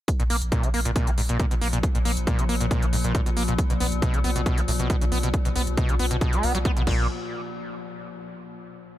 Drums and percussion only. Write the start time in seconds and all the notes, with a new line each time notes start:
0.08 kick, closed hi-hat
0.20 closed hi-hat
0.30 open hi-hat
0.42 closed hi-hat
0.52 kick, closed hi-hat
0.63 closed hi-hat
0.74 open hi-hat
0.85 closed hi-hat
0.96 kick, closed hi-hat
1.07 closed hi-hat
1.18 open hi-hat
1.29 closed hi-hat
1.40 kick, closed hi-hat
1.51 closed hi-hat
1.62 open hi-hat
1.73 closed hi-hat
1.83 kick, closed hi-hat
1.95 closed hi-hat
2.05 open hi-hat
2.17 closed hi-hat
2.27 kick, closed hi-hat
2.39 closed hi-hat
2.49 open hi-hat
2.61 closed hi-hat
2.71 kick, closed hi-hat
2.82 closed hi-hat
2.93 open hi-hat
3.04 closed hi-hat
3.15 kick, closed hi-hat
3.26 closed hi-hat
3.37 open hi-hat
3.48 closed hi-hat
3.58 kick, closed hi-hat
3.70 closed hi-hat
3.80 open hi-hat
3.92 closed hi-hat
4.02 kick, closed hi-hat
4.14 closed hi-hat
4.24 open hi-hat
4.36 closed hi-hat
4.46 kick, closed hi-hat
4.58 closed hi-hat
4.68 open hi-hat
4.80 closed hi-hat
4.90 kick, closed hi-hat
5.01 closed hi-hat
5.12 open hi-hat
5.23 closed hi-hat
5.34 kick, closed hi-hat
5.45 closed hi-hat
5.56 open hi-hat
5.67 closed hi-hat
5.77 kick, closed hi-hat
5.89 closed hi-hat
5.99 open hi-hat
6.11 closed hi-hat
6.21 kick, closed hi-hat
6.33 closed hi-hat
6.43 open hi-hat
6.55 closed hi-hat
6.65 kick, closed hi-hat
6.77 closed hi-hat
6.87 kick, crash